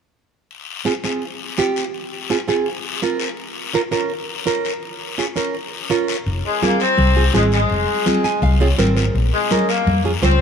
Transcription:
0.51 long guiro
0.85 C4 F4 G#4, short guiro
1.04 C4 F4 G#4, short guiro
1.22 long guiro
1.58 C4 F4 G4, short guiro
1.76 short guiro
1.94 long guiro
2.30 C4 F4 G#4, short guiro
2.48 C4 F4 G#4, short guiro
2.66 long guiro
3.02 C4 F4 A#4, short guiro
3.20 short guiro
3.37 long guiro
3.73 C#4 F4 A#4, short guiro
3.91 C#4 F4 A#4, short guiro
4.10 long guiro
4.46 C#4 F4 A#4, short guiro
4.65 short guiro
4.83 long guiro
5.18 C#4 F4 G#4, short guiro
5.36 C#4 F4 A#4, short guiro
5.55 long guiro
5.90 C#4 F4 A#4, short guiro
6.08 short guiro
6.26 F1, long guiro
6.46 G#3
6.62 A#3 C4 F4 G#4, high conga, short guiro
6.80 C4, short guiro
6.98 C2, high conga, long guiro
7.16 C4 F4 G#4
7.34 G#1 G#3 C4 F4 G#4, high conga, short guiro
7.52 G#3, short guiro
7.70 F1, long guiro
8.06 C4 F4 G#4, high conga, short guiro
8.24 G#5, short guiro
8.42 C2 F5, high conga, long guiro
8.60 C4 F4 G#4 C#5
8.78 G#1 C4 F4 A#4 C5, high conga, short guiro
8.97 A#4, short guiro
9.15 A#1, long guiro
9.34 G#3
9.51 C#4 F4 A#4, high conga, short guiro
9.69 A#3, short guiro
9.87 F2, high conga, long guiro
10.04 C#4 F4 G#4
10.22 C#2 C4 C#4 F4 C5, high conga, short guiro

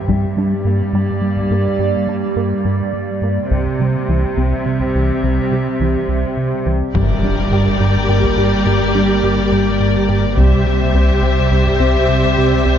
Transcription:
0.07 G2 G3 A#3 G4 D5, taiko
0.37 G3 D4
0.65 G2 A#3
0.93 G2 G3
1.21 G3
1.37 taiko
1.51 G2 A#3
1.79 G2 G3
2.07 G3 D4
2.36 G2 A#3
2.65 G2 G3
2.93 G3
3.21 G2 A#3
3.51 C2 C3 G3 C4 G4 E5, taiko
3.80 C3 G3
4.08 C2 E3
4.37 C2 C3
4.66 C3
4.80 taiko
4.95 C2 E3
5.23 C2 C3
5.51 C3 G3
5.80 C2 E3
6.08 C2 C3
6.37 C3
6.66 C2 E3
6.94 G1 G2 G3 A#3 G4 A#4 D5, taiko, impact
7.23 G3 D4
7.51 G2 G4
7.80 G2 G3
8.09 G2 G4
8.24 taiko
8.37 G2 G4
8.66 G2 G3
8.94 G3 D4
9.23 G2 G4
9.52 G2 G3
9.80 G2 G4
10.09 G2 G4
10.36 C2 C3 G3 C4 G4 C5 E5, taiko
10.66 C3 G3
10.94 C2 C4
11.22 C2 C3
11.51 C2 C4
11.66 taiko
11.79 C2 C4
12.08 C2 C3
12.37 C3 G3
12.66 C2 C4

